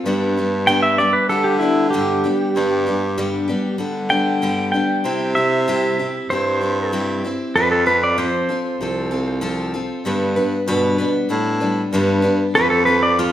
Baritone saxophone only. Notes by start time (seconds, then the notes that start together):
0.05 G2
1.30 D3
2.56 G2
3.79 D3
5.04 C3
6.30 G2
7.56 F2
8.80 C2
10.05 G2
10.67 B2
11.31 A2
11.93 G2
12.55 F2